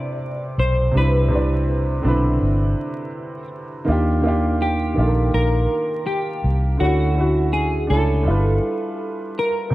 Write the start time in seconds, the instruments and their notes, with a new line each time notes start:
Already playing: upright piano C3 C4 D4 E4 G4 A4 B4, clean electric guitar D5
0.58 fingered electric bass B1, clean electric guitar C5
0.91 fingered electric bass C2, upright piano C3 C4 D4
0.96 upright piano E4 B4, clean electric guitar B4
1.28 upright piano C3 C4 D4
1.33 upright piano E4 D5
2.01 fingered electric bass B1, upright piano D3 C4 D4
2.07 upright piano E4 B4
2.41 fingered electric bass G1
3.85 fingered electric bass D#2, upright piano D#3 A#3 D4
3.90 upright piano F4 G4
4.22 upright piano D#3 A#3 D4
4.27 upright piano F4 G4
4.62 clean electric guitar G4
4.94 fingered electric bass A#1, upright piano D#3 A#3 D4
4.99 upright piano F4 A4
5.07 upright piano A#4
5.34 fingered electric bass A#1, clean electric guitar A#4
6.07 clean electric guitar G4
6.44 fingered electric bass C2
6.77 fingered electric bass D2, upright piano D3 A3 C#4, clean electric guitar F#4
6.82 upright piano E4 F#4
7.14 upright piano D3 A3 C#4
7.18 upright piano E4 F#4
7.53 clean electric guitar G#4
7.87 fingered electric bass C#2, upright piano A3 C#4 D4, clean electric guitar A4
7.92 upright piano E4 G#5
8.23 fingered electric bass G1, upright piano G3 D4 E4
8.28 upright piano F4 A4 B4
9.39 clean electric guitar A#4
9.70 upright piano C3